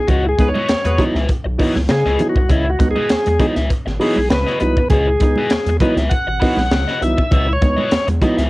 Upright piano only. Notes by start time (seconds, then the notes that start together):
0.08 C#3
0.38 B3 D#4
0.98 E3 F#3 B3 D#4
1.58 E3 F#3 B3 D#4
1.89 C#3
2.18 E3 F#3 B3 D#4
2.35 B3 D#4
2.49 C#3
2.79 B3 D#4
3.39 E3 F#3 B3 D#4
3.99 E3 F#3 B3 D#4
4.30 C#3
4.60 E3 F#3 B3 D#4
4.76 B3 D#4
4.90 C#3
5.21 B3 D#4
5.81 E3 F#3 B3 D#4
6.41 E3 F#3 B3 D#4
6.72 C#3
7.01 E3 F#3 B3 D#4
7.18 B3 D#4
7.32 C#3
7.62 B3 D#4
8.21 E3 F#3 B3 D#4